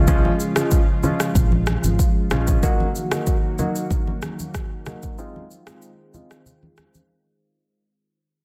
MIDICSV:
0, 0, Header, 1, 5, 480
1, 0, Start_track
1, 0, Tempo, 638298
1, 59, Time_signature, 4, 2, 24, 8
1, 6351, End_track
2, 0, Start_track
2, 0, Title_t, "Grand piano"
2, 0, Program_c, 0, 0
2, 57, Note_on_c, 0, 53, 93
2, 58, Note_on_c, 0, 56, 85
2, 60, Note_on_c, 0, 61, 84
2, 62, Note_on_c, 0, 65, 100
2, 231, Note_off_c, 0, 53, 0
2, 231, Note_off_c, 0, 56, 0
2, 232, Note_off_c, 0, 61, 0
2, 233, Note_off_c, 0, 65, 0
2, 420, Note_on_c, 0, 53, 78
2, 422, Note_on_c, 0, 56, 67
2, 424, Note_on_c, 0, 61, 67
2, 425, Note_on_c, 0, 65, 81
2, 590, Note_off_c, 0, 53, 0
2, 591, Note_off_c, 0, 56, 0
2, 592, Note_off_c, 0, 61, 0
2, 592, Note_off_c, 0, 65, 0
2, 776, Note_on_c, 0, 53, 78
2, 777, Note_on_c, 0, 56, 70
2, 779, Note_on_c, 0, 61, 68
2, 780, Note_on_c, 0, 65, 81
2, 951, Note_off_c, 0, 53, 0
2, 951, Note_off_c, 0, 56, 0
2, 952, Note_off_c, 0, 61, 0
2, 952, Note_off_c, 0, 65, 0
2, 1737, Note_on_c, 0, 53, 75
2, 1738, Note_on_c, 0, 56, 68
2, 1740, Note_on_c, 0, 61, 70
2, 1742, Note_on_c, 0, 65, 83
2, 1959, Note_off_c, 0, 53, 0
2, 1960, Note_off_c, 0, 56, 0
2, 1961, Note_off_c, 0, 61, 0
2, 1962, Note_off_c, 0, 65, 0
2, 1977, Note_on_c, 0, 54, 87
2, 1978, Note_on_c, 0, 58, 87
2, 1979, Note_on_c, 0, 63, 82
2, 1981, Note_on_c, 0, 66, 101
2, 2151, Note_off_c, 0, 54, 0
2, 2152, Note_off_c, 0, 58, 0
2, 2152, Note_off_c, 0, 63, 0
2, 2153, Note_off_c, 0, 66, 0
2, 2342, Note_on_c, 0, 54, 71
2, 2343, Note_on_c, 0, 58, 65
2, 2344, Note_on_c, 0, 63, 67
2, 2346, Note_on_c, 0, 66, 82
2, 2510, Note_off_c, 0, 54, 0
2, 2511, Note_off_c, 0, 58, 0
2, 2511, Note_off_c, 0, 63, 0
2, 2512, Note_off_c, 0, 66, 0
2, 2697, Note_on_c, 0, 54, 74
2, 2699, Note_on_c, 0, 58, 68
2, 2700, Note_on_c, 0, 63, 67
2, 2702, Note_on_c, 0, 66, 84
2, 2871, Note_off_c, 0, 54, 0
2, 2872, Note_off_c, 0, 58, 0
2, 2873, Note_off_c, 0, 63, 0
2, 2874, Note_off_c, 0, 66, 0
2, 3658, Note_on_c, 0, 54, 74
2, 3659, Note_on_c, 0, 58, 70
2, 3660, Note_on_c, 0, 63, 68
2, 3662, Note_on_c, 0, 66, 82
2, 3880, Note_off_c, 0, 54, 0
2, 3880, Note_off_c, 0, 58, 0
2, 3881, Note_off_c, 0, 63, 0
2, 3882, Note_off_c, 0, 66, 0
2, 3897, Note_on_c, 0, 56, 88
2, 3898, Note_on_c, 0, 60, 83
2, 3900, Note_on_c, 0, 63, 84
2, 3901, Note_on_c, 0, 65, 100
2, 4071, Note_off_c, 0, 56, 0
2, 4072, Note_off_c, 0, 60, 0
2, 4073, Note_off_c, 0, 63, 0
2, 4073, Note_off_c, 0, 65, 0
2, 4261, Note_on_c, 0, 56, 74
2, 4263, Note_on_c, 0, 60, 71
2, 4264, Note_on_c, 0, 63, 68
2, 4265, Note_on_c, 0, 65, 83
2, 4430, Note_off_c, 0, 56, 0
2, 4431, Note_off_c, 0, 60, 0
2, 4431, Note_off_c, 0, 63, 0
2, 4432, Note_off_c, 0, 65, 0
2, 4616, Note_on_c, 0, 56, 72
2, 4617, Note_on_c, 0, 60, 64
2, 4619, Note_on_c, 0, 63, 70
2, 4620, Note_on_c, 0, 65, 82
2, 4790, Note_off_c, 0, 56, 0
2, 4791, Note_off_c, 0, 60, 0
2, 4792, Note_off_c, 0, 63, 0
2, 4792, Note_off_c, 0, 65, 0
2, 6351, End_track
3, 0, Start_track
3, 0, Title_t, "Analog synth pad"
3, 0, Program_c, 1, 89
3, 0, Note_on_c, 1, 49, 78
3, 0, Note_on_c, 1, 53, 69
3, 0, Note_on_c, 1, 56, 71
3, 0, Note_on_c, 1, 65, 84
3, 1958, Note_off_c, 1, 49, 0
3, 1958, Note_off_c, 1, 53, 0
3, 1958, Note_off_c, 1, 56, 0
3, 1958, Note_off_c, 1, 65, 0
3, 1976, Note_on_c, 1, 58, 73
3, 1977, Note_on_c, 1, 51, 76
3, 1977, Note_on_c, 1, 66, 85
3, 1978, Note_on_c, 1, 54, 73
3, 3878, Note_off_c, 1, 58, 0
3, 3879, Note_off_c, 1, 54, 0
3, 3879, Note_off_c, 1, 66, 0
3, 3897, Note_on_c, 1, 56, 71
3, 3897, Note_on_c, 1, 60, 69
3, 3897, Note_on_c, 1, 65, 88
3, 5788, Note_off_c, 1, 51, 0
3, 5798, Note_off_c, 1, 56, 0
3, 5798, Note_off_c, 1, 65, 0
3, 5799, Note_off_c, 1, 60, 0
3, 6351, End_track
4, 0, Start_track
4, 0, Title_t, "Fingered electric bass"
4, 0, Program_c, 2, 33
4, 0, Note_on_c, 2, 37, 99
4, 209, Note_off_c, 2, 37, 0
4, 1017, Note_on_c, 2, 34, 98
4, 1315, Note_off_c, 2, 34, 0
4, 1382, Note_on_c, 2, 32, 89
4, 1477, Note_off_c, 2, 32, 0
4, 1738, Note_on_c, 2, 34, 82
4, 1934, Note_off_c, 2, 34, 0
4, 6351, End_track
5, 0, Start_track
5, 0, Title_t, "Drums"
5, 57, Note_on_c, 9, 82, 80
5, 58, Note_on_c, 9, 36, 125
5, 132, Note_off_c, 9, 82, 0
5, 133, Note_off_c, 9, 36, 0
5, 189, Note_on_c, 9, 63, 83
5, 264, Note_off_c, 9, 63, 0
5, 300, Note_on_c, 9, 82, 48
5, 376, Note_off_c, 9, 82, 0
5, 420, Note_on_c, 9, 37, 112
5, 424, Note_on_c, 9, 82, 78
5, 496, Note_off_c, 9, 37, 0
5, 499, Note_off_c, 9, 82, 0
5, 535, Note_on_c, 9, 82, 87
5, 538, Note_on_c, 9, 36, 93
5, 611, Note_off_c, 9, 82, 0
5, 613, Note_off_c, 9, 36, 0
5, 776, Note_on_c, 9, 82, 45
5, 778, Note_on_c, 9, 63, 68
5, 778, Note_on_c, 9, 64, 68
5, 851, Note_off_c, 9, 82, 0
5, 853, Note_off_c, 9, 63, 0
5, 853, Note_off_c, 9, 64, 0
5, 902, Note_on_c, 9, 37, 90
5, 904, Note_on_c, 9, 82, 75
5, 978, Note_off_c, 9, 37, 0
5, 979, Note_off_c, 9, 82, 0
5, 1017, Note_on_c, 9, 36, 111
5, 1017, Note_on_c, 9, 64, 66
5, 1020, Note_on_c, 9, 82, 84
5, 1092, Note_off_c, 9, 36, 0
5, 1092, Note_off_c, 9, 64, 0
5, 1095, Note_off_c, 9, 82, 0
5, 1143, Note_on_c, 9, 63, 86
5, 1218, Note_off_c, 9, 63, 0
5, 1252, Note_on_c, 9, 82, 49
5, 1256, Note_on_c, 9, 37, 95
5, 1264, Note_on_c, 9, 63, 64
5, 1327, Note_off_c, 9, 82, 0
5, 1331, Note_off_c, 9, 37, 0
5, 1339, Note_off_c, 9, 63, 0
5, 1383, Note_on_c, 9, 82, 73
5, 1386, Note_on_c, 9, 63, 78
5, 1458, Note_off_c, 9, 82, 0
5, 1461, Note_off_c, 9, 63, 0
5, 1498, Note_on_c, 9, 36, 90
5, 1499, Note_on_c, 9, 82, 74
5, 1573, Note_off_c, 9, 36, 0
5, 1574, Note_off_c, 9, 82, 0
5, 1734, Note_on_c, 9, 82, 51
5, 1738, Note_on_c, 9, 37, 97
5, 1738, Note_on_c, 9, 64, 80
5, 1810, Note_off_c, 9, 82, 0
5, 1813, Note_off_c, 9, 37, 0
5, 1813, Note_off_c, 9, 64, 0
5, 1861, Note_on_c, 9, 82, 79
5, 1864, Note_on_c, 9, 36, 101
5, 1936, Note_off_c, 9, 82, 0
5, 1940, Note_off_c, 9, 36, 0
5, 1977, Note_on_c, 9, 82, 82
5, 1978, Note_on_c, 9, 36, 122
5, 2053, Note_off_c, 9, 36, 0
5, 2053, Note_off_c, 9, 82, 0
5, 2108, Note_on_c, 9, 63, 82
5, 2183, Note_off_c, 9, 63, 0
5, 2222, Note_on_c, 9, 82, 48
5, 2297, Note_off_c, 9, 82, 0
5, 2343, Note_on_c, 9, 37, 107
5, 2346, Note_on_c, 9, 82, 81
5, 2418, Note_off_c, 9, 37, 0
5, 2421, Note_off_c, 9, 82, 0
5, 2457, Note_on_c, 9, 82, 88
5, 2459, Note_on_c, 9, 36, 94
5, 2532, Note_off_c, 9, 82, 0
5, 2534, Note_off_c, 9, 36, 0
5, 2696, Note_on_c, 9, 82, 43
5, 2699, Note_on_c, 9, 63, 68
5, 2699, Note_on_c, 9, 64, 70
5, 2771, Note_off_c, 9, 82, 0
5, 2774, Note_off_c, 9, 63, 0
5, 2774, Note_off_c, 9, 64, 0
5, 2825, Note_on_c, 9, 82, 75
5, 2900, Note_off_c, 9, 82, 0
5, 2937, Note_on_c, 9, 36, 104
5, 2937, Note_on_c, 9, 64, 66
5, 2940, Note_on_c, 9, 82, 80
5, 3012, Note_off_c, 9, 64, 0
5, 3013, Note_off_c, 9, 36, 0
5, 3015, Note_off_c, 9, 82, 0
5, 3064, Note_on_c, 9, 63, 80
5, 3139, Note_off_c, 9, 63, 0
5, 3174, Note_on_c, 9, 82, 47
5, 3178, Note_on_c, 9, 37, 90
5, 3186, Note_on_c, 9, 63, 65
5, 3249, Note_off_c, 9, 82, 0
5, 3253, Note_off_c, 9, 37, 0
5, 3261, Note_off_c, 9, 63, 0
5, 3304, Note_on_c, 9, 82, 74
5, 3309, Note_on_c, 9, 63, 80
5, 3379, Note_off_c, 9, 82, 0
5, 3384, Note_off_c, 9, 63, 0
5, 3418, Note_on_c, 9, 36, 91
5, 3418, Note_on_c, 9, 37, 92
5, 3418, Note_on_c, 9, 82, 72
5, 3493, Note_off_c, 9, 36, 0
5, 3493, Note_off_c, 9, 37, 0
5, 3493, Note_off_c, 9, 82, 0
5, 3655, Note_on_c, 9, 82, 52
5, 3658, Note_on_c, 9, 37, 96
5, 3660, Note_on_c, 9, 64, 80
5, 3730, Note_off_c, 9, 82, 0
5, 3733, Note_off_c, 9, 37, 0
5, 3736, Note_off_c, 9, 64, 0
5, 3780, Note_on_c, 9, 82, 74
5, 3785, Note_on_c, 9, 36, 98
5, 3855, Note_off_c, 9, 82, 0
5, 3860, Note_off_c, 9, 36, 0
5, 3897, Note_on_c, 9, 82, 78
5, 3972, Note_off_c, 9, 82, 0
5, 4031, Note_on_c, 9, 63, 80
5, 4106, Note_off_c, 9, 63, 0
5, 4142, Note_on_c, 9, 82, 48
5, 4217, Note_off_c, 9, 82, 0
5, 4263, Note_on_c, 9, 37, 106
5, 4266, Note_on_c, 9, 82, 78
5, 4338, Note_off_c, 9, 37, 0
5, 4341, Note_off_c, 9, 82, 0
5, 4377, Note_on_c, 9, 82, 86
5, 4452, Note_off_c, 9, 82, 0
5, 4617, Note_on_c, 9, 82, 43
5, 4618, Note_on_c, 9, 63, 67
5, 4618, Note_on_c, 9, 64, 67
5, 4693, Note_off_c, 9, 82, 0
5, 4694, Note_off_c, 9, 63, 0
5, 4694, Note_off_c, 9, 64, 0
5, 4744, Note_on_c, 9, 37, 87
5, 4746, Note_on_c, 9, 82, 74
5, 4819, Note_off_c, 9, 37, 0
5, 4821, Note_off_c, 9, 82, 0
5, 4857, Note_on_c, 9, 64, 65
5, 4861, Note_on_c, 9, 82, 79
5, 4932, Note_off_c, 9, 64, 0
5, 4936, Note_off_c, 9, 82, 0
5, 4984, Note_on_c, 9, 63, 82
5, 5059, Note_off_c, 9, 63, 0
5, 5093, Note_on_c, 9, 82, 48
5, 5097, Note_on_c, 9, 37, 88
5, 5104, Note_on_c, 9, 63, 64
5, 5168, Note_off_c, 9, 82, 0
5, 5172, Note_off_c, 9, 37, 0
5, 5179, Note_off_c, 9, 63, 0
5, 5224, Note_on_c, 9, 82, 71
5, 5227, Note_on_c, 9, 63, 77
5, 5299, Note_off_c, 9, 82, 0
5, 5302, Note_off_c, 9, 63, 0
5, 6351, End_track
0, 0, End_of_file